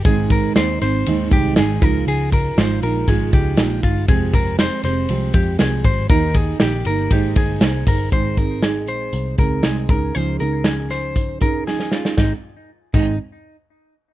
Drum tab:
CC |----------------|----------------|----------------|----------------|
RD |x-x-x-x-x-x-x-x-|x-x-x-x-x-x-x-x-|x-x-x-x-x-x-x-x-|x-x-x-x-x-x-x-x-|
HH |p---------------|----------------|----------------|--------------o-|
SD |----o-o-----o---|----o-------o---|----o-o-----o---|----o-------o---|
BD |o-o-------o---o-|--o-----o-o---o-|o-o-------o---o-|o-o-----o-o---o-|

CC |----------------|----------------|------x---------|
RD |----------------|----------------|----------------|
HH |x-x-x-x-x-x-x-x-|x-x-x-x-x-x-----|----------------|
SD |----o-------o---|----o-o-----oooo|o---------------|
BD |o-o-------o---o-|--------o-o-----|o-----o---------|